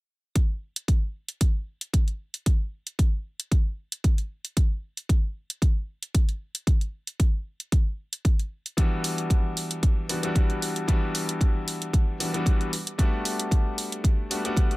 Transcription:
0.36 kick, closed hi-hat
0.76 closed hi-hat
0.88 kick, closed hi-hat
1.29 closed hi-hat
1.41 kick, closed hi-hat
1.81 closed hi-hat
1.93 kick, closed hi-hat
2.08 closed hi-hat
2.34 closed hi-hat
2.46 kick, closed hi-hat
2.87 closed hi-hat
2.99 kick, closed hi-hat
3.40 closed hi-hat
3.52 kick, closed hi-hat
3.92 closed hi-hat
4.04 kick, closed hi-hat
4.18 closed hi-hat
4.45 closed hi-hat
4.57 kick, closed hi-hat
4.97 closed hi-hat
5.09 kick, closed hi-hat
5.50 closed hi-hat
5.62 kick, closed hi-hat
6.03 closed hi-hat
6.15 kick, closed hi-hat
6.29 closed hi-hat
6.55 closed hi-hat
6.67 kick, closed hi-hat
6.81 closed hi-hat
7.07 closed hi-hat
7.20 kick, closed hi-hat
7.60 closed hi-hat
7.72 kick, closed hi-hat
8.13 closed hi-hat
8.25 kick, closed hi-hat
8.40 closed hi-hat
8.66 closed hi-hat
8.77 grand piano E3 G3 B3 D4 F#4, kick, closed hi-hat
9.04 open hi-hat
9.18 closed hi-hat
9.30 kick, closed hi-hat
9.57 open hi-hat
9.71 closed hi-hat
9.83 kick, closed hi-hat
10.09 grand piano E3 G3 B3 D4 F#4, open hi-hat
10.23 grand piano E3 G3 B3 D4 F#4, closed hi-hat
10.35 kick, closed hi-hat
10.50 closed hi-hat
10.62 open hi-hat
10.76 closed hi-hat
10.88 grand piano E3 G3 B3 D4 F#4, kick, closed hi-hat
11.15 open hi-hat
11.29 closed hi-hat
11.41 kick, closed hi-hat
11.68 open hi-hat
11.82 closed hi-hat
11.93 kick, closed hi-hat
12.20 grand piano E3 G3 B3 D4 F#4, open hi-hat
12.34 grand piano E3 G3 B3 D4 F#4, closed hi-hat
12.46 kick, closed hi-hat
12.61 closed hi-hat
12.73 open hi-hat
12.87 closed hi-hat
12.98 grand piano G3 A3 B3 D4 F#4, kick, closed hi-hat
13.25 open hi-hat
13.39 closed hi-hat
13.51 kick, closed hi-hat
13.78 open hi-hat
13.92 closed hi-hat
14.04 kick, closed hi-hat
14.30 grand piano G3 A3 B3 D4 F#4, open hi-hat
14.44 grand piano G3 A3 B3 D4 F#4, closed hi-hat
14.57 kick, closed hi-hat
14.71 closed hi-hat

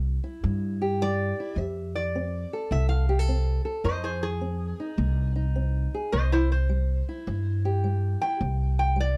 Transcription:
Already playing: upright bass C2, steel-string acoustic guitar G3
0.24 steel-string acoustic guitar E4
0.43 steel-string acoustic guitar G2, upright bass G2
0.82 steel-string acoustic guitar G4
1.01 steel-string acoustic guitar G3, resonator guitar played with a steel bar D5
1.40 steel-string acoustic guitar E4
1.56 upright bass F2, steel-string acoustic guitar F3, resonator guitar played with a steel bar E5
1.95 resonator guitar played with a steel bar D5
2.15 steel-string acoustic guitar C4
2.53 steel-string acoustic guitar A4
2.71 upright bass C2, steel-string acoustic guitar C3, resonator guitar played with a steel bar E5
2.89 resonator guitar played with a steel bar F5
3.09 steel-string acoustic guitar G4
3.19 steel-string acoustic guitar A4
3.28 steel-string acoustic guitar C4
3.65 steel-string acoustic guitar A4
3.84 upright bass F2, steel-string acoustic guitar F3, resonator guitar played with a steel bar C5 D#5
4.04 resonator guitar played with a steel bar G#4 C5
4.23 resonator guitar played with a steel bar G#4
4.41 steel-string acoustic guitar C4
4.80 steel-string acoustic guitar D#4
4.97 upright bass C2, steel-string acoustic guitar C3
5.36 steel-string acoustic guitar D#4
5.55 steel-string acoustic guitar C4
5.94 steel-string acoustic guitar G#4
6.12 upright bass C2, steel-string acoustic guitar C3, resonator guitar played with a steel bar C5 D#5
6.32 resonator guitar played with a steel bar E4 C5
6.52 resonator guitar played with a steel bar C5
6.69 steel-string acoustic guitar G3
7.09 steel-string acoustic guitar E4
7.27 upright bass G2, steel-string acoustic guitar G2
7.65 steel-string acoustic guitar G4
7.84 steel-string acoustic guitar G3
8.22 steel-string acoustic guitar E4, resonator guitar played with a steel bar G5
8.41 upright bass C2, steel-string acoustic guitar C3
8.79 resonator guitar played with a steel bar G5
8.96 steel-string acoustic guitar G3
9.00 resonator guitar played with a steel bar D5

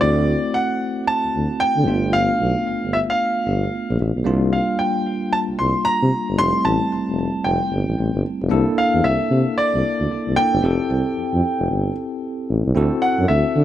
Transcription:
0.00 tuba D2, tine electric piano A3 C4 E4 F#4, grand piano D5
0.54 grand piano F#5
1.07 grand piano A5
1.24 tuba D2
1.34 tuba D2
1.60 grand piano G5
1.77 tuba D3
1.86 tuba G1, tine electric piano A3 B3 D4 F4
2.13 grand piano F5
2.40 tuba B1
2.67 tuba G1
2.83 tuba G1
2.93 grand piano E5
3.10 grand piano F5
3.46 tuba G1
3.90 tuba A#1
4.00 tuba A1
4.16 tuba B1
4.24 tuba C2, tine electric piano G3 A#3 D4 F4
4.53 grand piano F5
4.79 grand piano G5
5.33 grand piano A5
5.49 tuba C2
5.59 tuba C2, grand piano C6
5.85 grand piano A#5
6.02 tuba C3
6.29 tuba G1
6.37 tuba F1, tine electric piano G3 A3 C4 E4, grand piano C6
6.65 tuba A1, grand piano A5
6.92 tuba F1
7.09 tuba F1
7.44 tuba F1, grand piano G5
7.71 tuba G1
7.88 tuba A1
7.98 tuba A1
8.15 tuba G1
8.41 tuba F1
8.49 tuba C2, tine electric piano A#3 D4 E4 A4
8.78 grand piano F5
8.94 tuba E2
9.04 tuba C2, grand piano E5
9.30 tuba C3
9.58 grand piano D5
9.74 tuba C2
10.00 tuba D2
10.10 tuba C2
10.27 tuba C2
10.36 tine electric piano A#3 D4 E4 A4, grand piano G5
10.53 tuba G1
10.62 tuba F1, tine electric piano C4 E4 G4 A4
10.90 tuba C2
11.16 tuba F2
11.33 tuba F2
11.60 tuba F1
11.70 tuba G1
12.49 tuba A1
12.66 tuba C2
12.75 tuba D2, tine electric piano C4 E4 F#4 A4
13.02 grand piano F#5
13.19 tuba F#2
13.28 tuba D2, grand piano E5
13.56 tuba D3

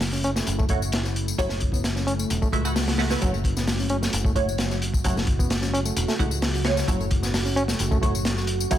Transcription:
Already playing: picked electric bass F#1, ambient pad C#3 F#3 A3 E4
0.01 snare, open hi-hat, tambourine
0.13 reed electric piano C#4, tambourine
0.24 reed electric piano C#4, closed hi-hat
0.36 reed electric piano A3, snare, tambourine
0.47 picked electric bass F#1, closed hi-hat, tambourine
0.59 reed electric piano A3, kick, tambourine
0.69 reed electric piano A3, synth stab A3 E4 F#4 C#5, kick, closed hi-hat
0.82 tambourine
0.92 snare, closed hi-hat, tambourine
1.04 snare, tambourine
1.16 closed hi-hat
1.28 tambourine
1.38 picked electric bass F#1, reed electric piano F#3, synth stab A3 E4 F#4 C#5, kick, closed hi-hat, tambourine
1.49 reed electric piano A3, snare, tambourine
1.60 kick, closed hi-hat
1.72 reed electric piano B3, kick, tambourine
1.84 snare, closed hi-hat, tambourine
1.96 reed electric piano C#4, snare, tambourine
2.07 reed electric piano C#4, closed hi-hat
2.19 reed electric piano A3, tambourine
2.30 picked electric bass E1, closed hi-hat, tambourine
2.42 reed electric piano A3, kick, tambourine
2.52 picked electric bass C#2, reed electric piano A3, synth stab A3 E4 F#4 E5, kick, closed hi-hat
2.65 synth stab A3 E4 F#4 F#5, tambourine
2.76 snare, open hi-hat, tambourine
2.88 snare, open hi-hat, tambourine
2.98 synth stab A3 E4 F#4 F#5, snare, open hi-hat
3.10 synth stab A3 E4 F#4 B4, snare, open hi-hat, tambourine
3.22 picked electric bass F#1, reed electric piano F#3, synth stab A3 E4 F#4 C#5, ambient pad F#4, kick, closed hi-hat, tambourine
3.33 reed electric piano A3, tambourine
3.44 kick, closed hi-hat
3.57 reed electric piano B3, snare, tambourine
3.67 snare, open hi-hat, tambourine
3.80 reed electric piano C#4, tambourine
3.90 reed electric piano C#4, closed hi-hat
4.02 reed electric piano A3, snare, tambourine
4.13 picked electric bass F#1, closed hi-hat, tambourine
4.25 reed electric piano A3, kick, tambourine
4.35 reed electric piano A3, synth stab A3 E4 F#4 C#5, kick, closed hi-hat
4.49 tambourine
4.58 snare, closed hi-hat, tambourine
4.70 snare, tambourine
4.82 closed hi-hat
4.94 kick, tambourine
5.04 picked electric bass F#1, reed electric piano F#3, synth stab A3 E4 F#4 C#5, kick, closed hi-hat, tambourine
5.17 reed electric piano A3, snare, tambourine
5.27 kick, closed hi-hat
5.39 reed electric piano B3, kick, tambourine
5.50 snare, closed hi-hat, tambourine
5.61 reed electric piano C#4, snare, tambourine
5.73 reed electric piano C#4, closed hi-hat
5.85 reed electric piano A3, tambourine
5.97 picked electric bass E1, closed hi-hat, tambourine
6.08 reed electric piano A3, snare, tambourine
6.19 picked electric bass C#2, synth stab A3 E4 F#4 F#5, reed electric piano A3, kick, closed hi-hat
6.31 tambourine
6.42 snare, open hi-hat, tambourine
6.55 tambourine
6.65 synth stab A3 E4 F#4 C#5, snare, closed hi-hat
6.77 snare, tambourine
6.88 picked electric bass F#1, reed electric piano F#3, synth stab A3 E4 F#4 C#5, kick, closed hi-hat, tambourine
7.00 reed electric piano A3, tambourine
7.11 kick, closed hi-hat
7.22 reed electric piano B3, snare, tambourine
7.34 snare, open hi-hat, tambourine
7.45 reed electric piano C#4, tambourine
7.56 reed electric piano C#4, closed hi-hat
7.68 reed electric piano A3, snare, tambourine
7.79 picked electric bass F#1, closed hi-hat, tambourine
7.91 reed electric piano A3, kick, tambourine
8.02 reed electric piano A3, synth stab A3 E4 F#4 C#5, kick, closed hi-hat
8.15 tambourine
8.25 snare, closed hi-hat, tambourine
8.38 snare, tambourine
8.47 closed hi-hat
8.60 tambourine
8.71 picked electric bass F#1, reed electric piano F#3, synth stab A3 E4 F#4 C#5, kick, closed hi-hat, tambourine

